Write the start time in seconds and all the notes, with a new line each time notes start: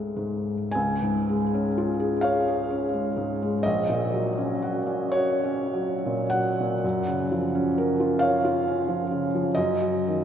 Already playing: C#2 G#3 A3
0.16 G#2
0.71 C#2 G#5
1.02 G#2
1.29 G#3
1.54 C#4
1.78 F4
2.00 G#4
2.21 C#5 F5
2.48 G#4
2.71 C#4
2.94 G#3
3.17 G#2
3.42 G#3
3.63 A#1 D#5
3.89 A#2
4.13 F#3
4.38 C#4
4.62 F#4
4.86 C#4
5.12 F#4 C#5
5.44 C#4
5.74 F#3
6.06 A#2
6.30 F#3 F#5
6.61 A#2
6.84 F#2
7.08 C#3
7.32 F3
7.55 C#4
7.78 A#4
8.00 F4
8.19 C#5 F5
8.44 F4
8.68 C#4
8.88 F3
9.11 C#3
9.35 F3
9.55 F#2 D#5
9.81 F#3
10.08 D#3